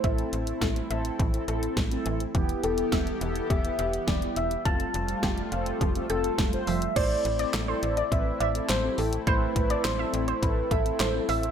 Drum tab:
CC |----------------|----------------|----------------|x---------------|
HH |xxxxxxxxxxxxxxxx|xxxxxxxxxxxxxxxx|xxxxxxxxxxxxxxox|x-xxx-xxx-xxx-ox|
CP |----------------|----------------|----------------|----x-------x---|
SD |----o-------o---|----o-------o---|----o-------o---|----o-------o---|
BD |o---o---o---o---|o---o---o---o---|o---o---o---o---|o-------o-------|

CC |----------------|
HH |x-xxx-xxx-xxx-ox|
CP |----x-------x---|
SD |----o-------o---|
BD |o-o-----o-o-----|